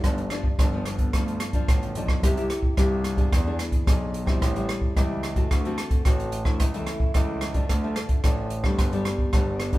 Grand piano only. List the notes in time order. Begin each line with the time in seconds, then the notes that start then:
0.04 G1
0.59 G1
1.13 D2
1.68 A1
1.95 B1
2.23 C2
2.78 C2
3.33 E2
3.87 B1
4.26 A#1
4.42 A1
4.97 C#2
5.51 D2
6.06 A1
6.44 D2
6.60 C#2
7.15 C#2
7.69 D2
8.24 A1
8.63 D2
8.79 G1
9.33 G1